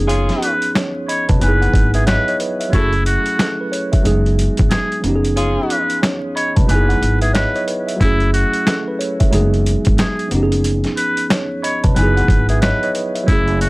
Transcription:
Already playing: upright bass F#1, tine electric piano F#2 F3 B3 C#4 D#4 G#4
0.07 saxophone section C#4 F4 G#4, closed hi-hat
0.29 snare, closed hi-hat
0.42 muted trumpet B4, closed hi-hat
0.62 closed hi-hat
0.75 tine electric piano C#5, snare, closed hi-hat
1.08 muted trumpet C#5, tine electric piano D#5 B5, closed hi-hat
1.29 upright bass F1, tine electric piano B4 A5, kick, closed hi-hat
1.39 upright bass F#1, tine electric piano F#3 B3, muted trumpet B4, closed hi-hat
1.44 tine electric piano D#4 E4 G#5
1.48 tine electric piano G#4
1.61 tine electric piano F#5, closed hi-hat
1.74 upright bass G#1, kick, closed hi-hat
1.94 muted trumpet G#4, tine electric piano B4 E5, closed hi-hat
2.06 muted trumpet B4, tine electric piano C#5 D#5, snare, closed hi-hat
2.28 tine electric piano C#5 D#5, closed hi-hat
2.40 tine electric piano B4, closed hi-hat
2.60 tine electric piano E5, closed hi-hat
2.69 tine electric piano F#3 A3, muted trumpet E4
2.73 upright bass F#1, tine electric piano C#4 E4, saxophone section E4 F#4 A4, kick, closed hi-hat
2.78 tine electric piano G#4
2.93 closed hi-hat
3.06 muted trumpet F#4, closed hi-hat
3.26 closed hi-hat
3.39 tine electric piano A4, snare, closed hi-hat
3.61 tine electric piano B4
3.72 tine electric piano C#5, closed hi-hat
3.92 tine electric piano E5, kick, closed hi-hat
4.02 upright bass F#1, tine electric piano F#3 G#3 A3 D#4, closed hi-hat
4.07 tine electric piano G#4
4.11 tine electric piano B3
4.26 closed hi-hat
4.39 closed hi-hat
4.57 upright bass G#1, kick, closed hi-hat
4.70 muted trumpet G#4, snare, closed hi-hat
4.92 closed hi-hat
5.00 upright bass F#1, tine electric piano F#2 F3 B3, closed hi-hat
5.05 tine electric piano C#4 D#4 G4
5.15 tine electric piano G#4
5.25 closed hi-hat
5.36 saxophone section C#4 F4 G#4, closed hi-hat
5.70 muted trumpet B4, closed hi-hat
5.90 closed hi-hat
6.02 tine electric piano C#5, snare, closed hi-hat
6.36 muted trumpet C#5, tine electric piano D#5 B5, closed hi-hat
6.56 upright bass F1, tine electric piano B4 A5, kick, closed hi-hat
6.66 upright bass F#1, tine electric piano F#3 B3, muted trumpet B4, closed hi-hat
6.71 tine electric piano D#4 E4 G#5
6.75 tine electric piano G#4
6.89 tine electric piano F#5, closed hi-hat
7.02 upright bass G#1, closed hi-hat
7.22 muted trumpet G#4, tine electric piano B4 E5, closed hi-hat
7.34 muted trumpet B4, tine electric piano C#5 D#5, snare, closed hi-hat
7.56 tine electric piano C#5 D#5, closed hi-hat
7.68 tine electric piano B4, closed hi-hat
7.87 tine electric piano E5, closed hi-hat
7.96 tine electric piano F#3 A3
8.01 upright bass F#1, tine electric piano C#4 E4, muted trumpet E4, kick, closed hi-hat
8.05 tine electric piano G#4
8.20 closed hi-hat
8.34 muted trumpet F#4, closed hi-hat
8.54 closed hi-hat
8.67 tine electric piano A4, snare, closed hi-hat
8.88 tine electric piano B4
8.99 tine electric piano C#5, closed hi-hat
9.20 tine electric piano E5, kick, closed hi-hat
9.30 upright bass F#1, tine electric piano F#3 G#3 A3 D#4, closed hi-hat
9.34 tine electric piano G#4
9.39 tine electric piano B3
9.54 closed hi-hat
9.66 closed hi-hat
9.85 upright bass G#1, kick, closed hi-hat
9.98 muted trumpet G#4, snare, closed hi-hat
10.19 closed hi-hat
10.28 upright bass F#1, tine electric piano F#2 F3 B3, closed hi-hat
10.33 tine electric piano C#4 D#4 G4
10.43 tine electric piano G#4
10.52 closed hi-hat
10.64 closed hi-hat
10.84 snare, closed hi-hat
10.97 muted trumpet B4, closed hi-hat
11.17 closed hi-hat
11.30 tine electric piano C#5, snare, closed hi-hat
11.63 muted trumpet C#5, tine electric piano D#5 B5, closed hi-hat
11.84 upright bass F1, tine electric piano B4 A5, kick, closed hi-hat
11.94 upright bass F#1, tine electric piano F#3 B3, muted trumpet B4, closed hi-hat
11.99 tine electric piano D#4 E4 G#5
12.03 tine electric piano G#4
12.17 tine electric piano F#5, closed hi-hat
12.28 upright bass G#1, kick, closed hi-hat
12.49 muted trumpet G#4, tine electric piano B4 E5, closed hi-hat
12.61 muted trumpet B4, tine electric piano C#5 D#5, snare, closed hi-hat
12.83 tine electric piano C#5 D#5, closed hi-hat
12.95 tine electric piano B4, closed hi-hat
13.15 tine electric piano E5, closed hi-hat
13.23 tine electric piano F#3 A3
13.28 upright bass F#1, tine electric piano C#4 E4, muted trumpet E4, kick, closed hi-hat
13.32 tine electric piano G#4
13.48 closed hi-hat
13.61 muted trumpet F#4, closed hi-hat

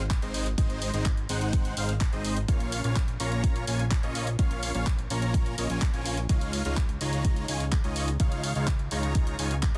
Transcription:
Already playing: analog synth bass G#1
0.10 kick, clap, closed hi-hat
0.22 analog synth bass G#1, supersaw synth G#3 C4 D#4 C5 D#5, closed hi-hat
0.34 open hi-hat
0.46 closed hi-hat
0.58 supersaw synth G#3 C4 D#4 C5 D#5, kick, closed hi-hat
0.70 closed hi-hat
0.82 open hi-hat
0.94 analog synth bass G#1, supersaw synth G#3 C4 D#4 C5 D#5, closed hi-hat
1.05 kick, clap, closed hi-hat
1.17 closed hi-hat
1.29 analog synth bass G#1, supersaw synth G#3 C4 D#4 C5 F#5, open hi-hat
1.41 closed hi-hat
1.53 kick, closed hi-hat
1.65 closed hi-hat
1.77 analog synth bass G#1, supersaw synth G#3 C4 D#4 C5 F5, open hi-hat
1.89 closed hi-hat
2.01 kick, clap, closed hi-hat
2.13 analog synth bass G#1, supersaw synth G#3 C4 D#4 C5 D#5, closed hi-hat
2.25 open hi-hat
2.37 closed hi-hat
2.48 analog synth bass A#1, supersaw synth A#3 C#4 F4 C#5 F5, kick, closed hi-hat
2.60 closed hi-hat
2.72 open hi-hat
2.84 analog synth bass A#1, supersaw synth A#3 C#4 F4 C#5 F5, closed hi-hat
2.96 kick, clap, closed hi-hat
3.08 closed hi-hat
3.20 analog synth bass A#1, supersaw synth A#3 C#4 F4 C#5 A#5, open hi-hat
3.32 closed hi-hat
3.44 kick, closed hi-hat
3.56 closed hi-hat
3.67 analog synth bass A#1, supersaw synth A#3 C#4 F4 C#5 G#5, open hi-hat
3.79 closed hi-hat
3.91 kick, clap, closed hi-hat
4.03 analog synth bass A#1, supersaw synth A#3 C#4 F4 C#5 D#5, closed hi-hat
4.15 open hi-hat
4.27 closed hi-hat
4.39 supersaw synth A#3 C#4 F4 C#5 F5, kick, closed hi-hat
4.51 closed hi-hat
4.63 open hi-hat
4.75 analog synth bass A#1, supersaw synth A#3 C#4 F4 C#5 F5, closed hi-hat
4.87 kick, clap, closed hi-hat
4.99 closed hi-hat
5.10 analog synth bass A#1, supersaw synth A#3 C#4 F4 C#5 A#5, open hi-hat
5.22 closed hi-hat
5.34 kick, closed hi-hat
5.46 closed hi-hat
5.58 analog synth bass A#1, supersaw synth A#3 C#4 F4 C#5 D#5, open hi-hat
5.70 analog synth bass A#1, supersaw synth A#3 C#4 F4 C#5 G#5, closed hi-hat
5.82 kick, clap, closed hi-hat
5.94 analog synth bass A#1, supersaw synth A#3 C#4 F4 C#5 G#5, closed hi-hat
6.06 open hi-hat
6.17 closed hi-hat
6.29 analog synth bass C#2, supersaw synth G#3 D#4 F4 C#5 F5, kick, closed hi-hat
6.41 closed hi-hat
6.53 open hi-hat
6.65 analog synth bass C#2, supersaw synth G#3 D#4 F4 C#5 F5, closed hi-hat
6.77 kick, clap, closed hi-hat
6.89 closed hi-hat
7.01 analog synth bass C#2, supersaw synth G#3 D#4 F4 C#5 A#5, open hi-hat
7.13 closed hi-hat
7.25 kick, closed hi-hat
7.37 closed hi-hat
7.48 analog synth bass C#2, supersaw synth G#3 D#4 F4 C#5 G#5, open hi-hat
7.60 closed hi-hat
7.72 kick, clap, closed hi-hat
7.84 analog synth bass C#2, supersaw synth G#3 D#4 F4 C#5 D#5, closed hi-hat
7.96 open hi-hat
8.08 closed hi-hat
8.20 analog synth bass C#2, supersaw synth G#3 D#4 F4 C#5 F5, kick, closed hi-hat
8.32 closed hi-hat
8.44 open hi-hat
8.55 analog synth bass C#2, supersaw synth G#3 D#4 F4 C#5 F5, closed hi-hat
8.67 kick, clap, closed hi-hat
8.79 closed hi-hat
8.91 analog synth bass C#2, supersaw synth G#3 D#4 F4 C#5 A#5, open hi-hat
9.03 closed hi-hat
9.15 kick, closed hi-hat
9.27 closed hi-hat
9.39 analog synth bass C#2, supersaw synth G#3 D#4 F4 C#5 G#5, open hi-hat
9.51 closed hi-hat
9.63 kick, clap, closed hi-hat
9.75 analog synth bass C#2, supersaw synth G#3 D#4 F4 C#5 D#5, closed hi-hat

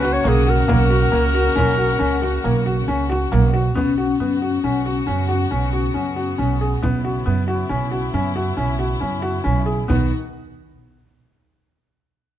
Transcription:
Already playing: upright bass C#2, string section C#3 A#3 F#4, vibraphone C#4
0.00 felt piano F#4, clarinet B4
0.05 frame drum
0.13 clarinet C#5
0.24 upright bass B1, felt piano A#3
0.28 clarinet G#4
0.47 felt piano F#4, clarinet A#4
0.68 upright bass B1, felt piano A#3, frame drum
0.90 felt piano F#4
1.12 upright bass C#2, felt piano A#3
1.35 felt piano F#4, frame drum
1.55 upright bass B1, felt piano C#4, frame drum
1.78 felt piano F#4
1.99 upright bass C#2, felt piano C#4
2.22 felt piano F#4, frame drum
2.44 upright bass B1, felt piano A#3
2.66 felt piano F#4
2.88 upright bass C#2, felt piano C#4
3.09 felt piano F#4, frame drum
3.32 upright bass B1, felt piano A#3
3.54 felt piano F#4
3.75 upright bass B1, string section C#3 B3 F#4, felt piano B3, vibraphone C#4, frame drum
3.98 felt piano F#4, frame drum
4.20 upright bass F#2, felt piano B3
4.42 felt piano F#4
4.64 upright bass B1, felt piano C#4, frame drum
4.86 felt piano F#4
5.07 upright bass F#2, felt piano C#4, frame drum
5.29 felt piano F#4, frame drum
5.51 upright bass B1, felt piano C#4
5.73 felt piano F#4, frame drum
5.94 upright bass F#2, felt piano C#4
6.16 felt piano F#4
6.38 upright bass B1, felt piano C#4
6.61 felt piano G#4
6.83 upright bass B1, felt piano B3, string section E4, frame drum
7.05 felt piano F#4, frame drum
7.26 upright bass F#2, felt piano B3
7.48 felt piano F#4
7.69 upright bass B1, felt piano C#4, frame drum
7.91 felt piano F#4
8.14 upright bass F#2, felt piano C#4
8.36 felt piano F#4, frame drum
8.57 upright bass B1, felt piano C#4
8.79 felt piano F#4, frame drum
9.01 upright bass F#2, felt piano C#4
9.22 felt piano F#4
9.44 upright bass B1, felt piano C#4
9.66 felt piano G#4
9.88 upright bass B1, string section D#3 B3 F#4, felt piano B3, vibraphone D#4, frame drum

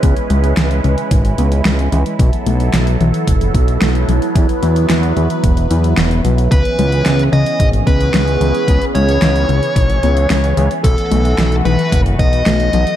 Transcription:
Already playing: analog synth pad G#3 C#4 E4 B4
0.03 analog synth bass C#2, synth arpeggio sound B3, kick, closed hi-hat
0.17 closed hi-hat
0.30 analog synth bass C#2, synth arpeggio sound G#3, closed hi-hat
0.44 closed hi-hat
0.57 analog synth bass C#2, synth arpeggio sound E3, snare, closed hi-hat
0.71 closed hi-hat
0.84 analog synth bass C#2, synth arpeggio sound C#3, closed hi-hat
0.98 closed hi-hat
1.11 analog synth bass G#1, synth arpeggio sound B2, kick, closed hi-hat
1.25 closed hi-hat
1.38 analog synth bass C#2, synth arpeggio sound B3, closed hi-hat
1.52 closed hi-hat
1.65 analog synth bass C#2, synth arpeggio sound G#3, snare, closed hi-hat
1.79 closed hi-hat
1.92 analog synth bass C#2, synth arpeggio sound E3, closed hi-hat
2.06 closed hi-hat
2.19 analog synth bass B1, analog synth pad F#3 B3 A4, synth arpeggio sound B3, kick, closed hi-hat
2.33 closed hi-hat
2.46 analog synth bass B1, synth arpeggio sound A3, closed hi-hat
2.60 closed hi-hat
2.73 analog synth bass B1, synth arpeggio sound F#3, snare, closed hi-hat
2.87 closed hi-hat
3.00 analog synth bass B1, synth arpeggio sound E3, closed hi-hat
3.14 closed hi-hat
3.27 analog synth bass F#1, synth arpeggio sound B2, kick, closed hi-hat
3.41 closed hi-hat
3.54 analog synth bass B1, synth arpeggio sound B3, kick, closed hi-hat
3.68 closed hi-hat
3.81 analog synth bass B1, synth arpeggio sound A3, snare, closed hi-hat
3.95 closed hi-hat
4.08 analog synth bass B1, synth arpeggio sound F#3, closed hi-hat
4.22 closed hi-hat
4.35 analog synth bass E2, synth arpeggio sound E4, analog synth pad B4, kick, closed hi-hat
4.49 closed hi-hat
4.62 analog synth bass E2, synth arpeggio sound B3, closed hi-hat
4.76 closed hi-hat
4.90 analog synth bass E2, synth arpeggio sound F#3, snare, closed hi-hat
5.03 closed hi-hat
5.17 analog synth bass E2, synth arpeggio sound E3, closed hi-hat
5.30 closed hi-hat
5.44 analog synth bass E1, synth arpeggio sound B2, kick, closed hi-hat
5.57 closed hi-hat
5.71 analog synth bass E2, synth arpeggio sound E4, closed hi-hat
5.84 closed hi-hat
5.98 analog synth bass E1, synth arpeggio sound B3, snare, closed hi-hat
6.11 closed hi-hat
6.25 analog synth bass B1, synth arpeggio sound F#3, closed hi-hat
6.38 closed hi-hat
6.51 analog synth bass C#2, analog synth pad E3 B3 C#4 G#4, synth arpeggio sound B3, lead electric guitar B4, kick, closed hi-hat
6.65 closed hi-hat
6.79 analog synth bass C#2, synth arpeggio sound G#3, closed hi-hat
6.92 closed hi-hat
7.06 analog synth bass C#2, synth arpeggio sound E3, snare, closed hi-hat
7.19 closed hi-hat
7.33 analog synth bass C#2, synth arpeggio sound C#3, lead electric guitar D#5, closed hi-hat
7.46 closed hi-hat
7.60 analog synth bass G#1, synth arpeggio sound B2, kick, closed hi-hat
7.73 closed hi-hat
7.87 analog synth bass C#2, synth arpeggio sound B3, lead electric guitar B4, kick, closed hi-hat
8.01 closed hi-hat
8.14 analog synth bass C#2, synth arpeggio sound G#3, snare, closed hi-hat
8.28 closed hi-hat
8.41 analog synth bass C#2, synth arpeggio sound E3, closed hi-hat
8.55 closed hi-hat
8.68 analog synth bass C#2, synth arpeggio sound B3, kick, closed hi-hat
8.82 closed hi-hat
8.95 analog synth bass C#2, synth arpeggio sound G#3, lead electric guitar C#5, closed hi-hat
9.09 closed hi-hat
9.22 analog synth bass C#2, synth arpeggio sound E3, snare, closed hi-hat
9.36 closed hi-hat
9.49 analog synth bass C#2, synth arpeggio sound C#3, closed hi-hat
9.63 closed hi-hat
9.76 analog synth bass G#1, synth arpeggio sound B2, kick, closed hi-hat
9.90 closed hi-hat
10.03 analog synth bass C#2, synth arpeggio sound B3, closed hi-hat
10.17 closed hi-hat
10.30 analog synth bass C#2, synth arpeggio sound G#3, snare, closed hi-hat
10.44 closed hi-hat
10.57 analog synth bass C#2, synth arpeggio sound E3, closed hi-hat
10.71 closed hi-hat
10.84 analog synth bass B1, analog synth pad A3 B3 F#4, synth arpeggio sound B3, lead electric guitar A4, kick, closed hi-hat
10.98 closed hi-hat
11.11 analog synth bass B1, synth arpeggio sound A3, closed hi-hat
11.25 closed hi-hat
11.38 analog synth bass B1, synth arpeggio sound F#3, snare, closed hi-hat
11.52 closed hi-hat
11.65 analog synth bass B1, synth arpeggio sound E3, lead electric guitar B4, closed hi-hat
11.79 closed hi-hat
11.92 analog synth bass F#1, synth arpeggio sound B2, kick, closed hi-hat
12.06 closed hi-hat
12.19 analog synth bass B1, synth arpeggio sound B3, lead electric guitar D#5, kick, closed hi-hat
12.33 closed hi-hat
12.46 analog synth bass B1, synth arpeggio sound A3, snare, closed hi-hat
12.60 closed hi-hat
12.73 analog synth bass B1, synth arpeggio sound F#3, closed hi-hat
12.87 closed hi-hat

